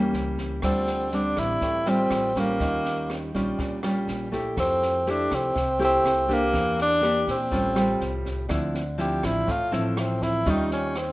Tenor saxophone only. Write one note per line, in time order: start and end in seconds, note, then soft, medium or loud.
0.64 1.17 C4 medium
1.15 1.41 D4 medium
1.39 1.90 E4 loud
1.89 2.40 C4 medium
2.39 3.36 A#3 medium
4.60 5.12 C4 loud
5.11 5.37 D4 medium
5.35 5.82 C4 loud
5.84 6.35 C4 loud
6.33 6.80 A#3 medium
6.82 7.26 D4 loud
7.31 8.23 C4 medium
9.01 9.27 G4 medium
9.25 9.53 E4 medium
9.51 9.74 F4 medium
9.75 10.02 A3 medium
10.01 10.24 C4 medium
10.23 10.51 E4 loud
10.49 10.72 D#4 medium
10.73 10.99 C#4 medium
10.98 11.12 C4 medium